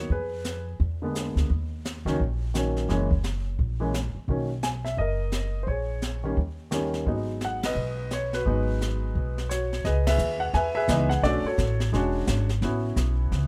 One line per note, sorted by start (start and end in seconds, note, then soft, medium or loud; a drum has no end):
0.10 0.76 F2 medium
0.10 0.77 G#4 soft
0.10 0.64 B4 medium
0.10 brush sweep soft
0.10 kick soft
0.45 snare soft
0.45 hi-hat pedal soft
0.80 1.32 E2 medium
0.80 brush sweep soft
0.80 kick soft
1.02 1.47 D3 soft
1.02 1.48 G#3 soft
1.02 1.48 A#3 soft
1.02 1.48 B3 medium
1.15 snare medium
1.15 hi-hat pedal medium
1.35 1.48 D2 medium
1.35 snare soft
1.50 2.02 D#2 medium
1.50 brush sweep soft
1.50 kick soft
1.85 snare medium
1.85 hi-hat pedal soft
2.05 2.18 C#2 medium
2.05 2.18 D#3 medium
2.05 2.18 F#3 medium
2.05 2.19 A#3 medium
2.05 2.19 C#4 medium
2.05 snare soft
2.19 2.86 A#1 medium
2.19 brush sweep soft
2.19 kick soft
2.54 2.89 D#3 medium
2.54 2.89 F#3 soft
2.54 2.89 A#3 soft
2.54 2.89 C#4 medium
2.54 snare medium
2.54 hi-hat pedal medium
2.77 snare soft
2.89 3.55 F#1 medium
2.89 3.08 E3 medium
2.89 3.09 G#3 medium
2.89 3.09 A#3 medium
2.89 3.09 C#4 medium
2.89 brush sweep soft
2.89 kick soft
2.89 snare soft
3.11 kick soft
3.24 snare soft
3.24 hi-hat pedal soft
3.59 4.11 A#1 medium
3.59 brush sweep soft
3.59 kick soft
3.80 3.92 E3 medium
3.80 3.92 G#3 medium
3.80 3.92 A#3 soft
3.80 3.93 C#4 medium
3.94 snare medium
3.94 hi-hat pedal medium
4.15 muted upright bass stroke soft
4.28 4.94 B1 medium
4.28 4.48 D#3 soft
4.28 4.48 F#3 soft
4.28 4.49 A#3 soft
4.28 4.49 C#4 medium
4.28 brush sweep soft
4.28 kick soft
4.63 4.68 G#5 medium
4.63 snare soft
4.63 hi-hat pedal soft
4.85 4.98 E5 medium
4.85 snare soft
4.97 5.64 F#1 medium
4.97 5.65 A#4 medium
4.97 5.64 D#5 medium
4.97 brush sweep soft
4.97 kick soft
5.32 snare medium
5.32 hi-hat pedal medium
5.63 6.33 A#1 medium
5.63 5.68 C5 soft
5.67 6.35 G#4 soft
5.67 6.20 C#5 medium
5.67 brush sweep soft
5.67 kick soft
6.02 snare soft
6.02 hi-hat pedal soft
6.24 6.36 D#3 medium
6.24 6.36 G3 soft
6.24 6.36 A#3 medium
6.24 6.36 C#4 medium
6.37 7.03 D#2 medium
6.37 brush sweep soft
6.37 kick soft
6.71 7.06 D#3 medium
6.71 7.06 G3 soft
6.71 7.07 A#3 soft
6.71 7.07 C#4 medium
6.71 snare medium
6.71 hi-hat pedal medium
6.94 snare soft
7.06 7.73 G#1 medium
7.06 8.03 F#3 soft
7.06 8.03 G#3 soft
7.06 8.04 B3 soft
7.06 8.04 D#4 medium
7.06 brush sweep soft
7.06 kick soft
7.40 snare soft
7.40 hi-hat pedal soft
7.45 7.63 F#5 medium
7.63 8.30 B4 medium
7.63 8.14 D#5 medium
7.63 snare medium
7.63 ride medium
7.75 8.42 B1 medium
7.75 brush sweep soft
8.11 8.32 C#5 medium
8.11 snare medium
8.11 hi-hat pedal soft
8.33 9.47 F#4 soft
8.33 9.47 B4 medium
8.33 snare soft
8.45 9.12 G#1 medium
8.45 9.42 F#3 medium
8.45 9.42 G#3 soft
8.45 9.43 B3 medium
8.45 9.43 D#4 medium
8.45 brush sweep soft
8.45 kick soft
8.81 snare medium
8.81 hi-hat pedal soft
9.15 9.81 B1 medium
9.15 brush sweep soft
9.15 kick soft
9.38 snare soft
9.49 9.83 F#4 medium
9.49 9.82 C#5 medium
9.49 snare medium
9.49 hi-hat pedal medium
9.73 snare soft
9.84 10.18 C#2 medium
9.84 10.08 G#4 medium
9.84 10.08 B4 medium
9.84 10.07 D#5 medium
9.84 brush sweep medium
9.84 kick soft
9.84 snare soft
10.06 10.73 G#4 medium
10.06 10.55 B4 medium
10.06 10.42 E5 loud
10.06 snare medium
10.06 ride medium
10.18 10.53 D#2 medium
10.18 hi-hat pedal medium
10.40 10.45 F#5 medium
10.53 10.87 E2 medium
10.53 10.75 B4 medium
10.53 10.73 E5 medium
10.53 10.74 G#5 medium
10.53 brush sweep soft
10.53 kick soft
10.53 snare soft
10.75 11.21 G#4 medium
10.75 11.21 B4 medium
10.75 11.08 E5 loud
10.88 11.22 C#2 medium
10.88 11.08 E3 medium
10.88 11.09 G#3 medium
10.88 11.09 B3 medium
10.88 11.09 D#4 medium
10.88 kick soft
10.88 snare medium
10.88 hi-hat pedal medium
11.09 11.22 F#5 medium
11.09 snare soft
11.23 11.43 B1 medium
11.23 11.43 A3 medium
11.23 11.43 C#4 soft
11.23 11.43 D4 medium
11.23 11.46 F#4 medium
11.23 11.46 A4 medium
11.23 11.46 D5 medium
11.23 brush sweep soft
11.23 kick soft
11.23 snare soft
11.43 12.46 C#5 medium
11.43 muted upright bass stroke soft
11.47 11.94 F#4 soft
11.47 11.91 A4 soft
11.58 11.92 A1 loud
11.58 kick soft
11.58 snare medium
11.58 hi-hat pedal soft
11.80 snare soft
11.92 12.26 E1 medium
11.92 12.45 G#3 medium
11.92 12.45 C#4 medium
11.92 12.45 D4 medium
11.92 12.46 F#4 medium
11.92 brush sweep soft
11.92 kick soft
11.92 snare soft
12.27 12.61 G#1 medium
12.27 kick soft
12.27 snare medium
12.27 hi-hat pedal medium
12.49 snare soft
12.62 12.96 A1 medium
12.62 13.47 B3 medium
12.62 13.47 C#4 soft
12.62 13.47 E4 soft
12.62 13.47 F#4 medium
12.62 brush sweep soft
12.62 kick soft
12.62 snare soft
12.96 13.30 B1 medium
12.96 kick soft
12.96 snare medium
12.96 hi-hat pedal medium
13.32 13.47 C#2 medium
13.32 brush sweep soft
13.32 kick soft
13.32 snare soft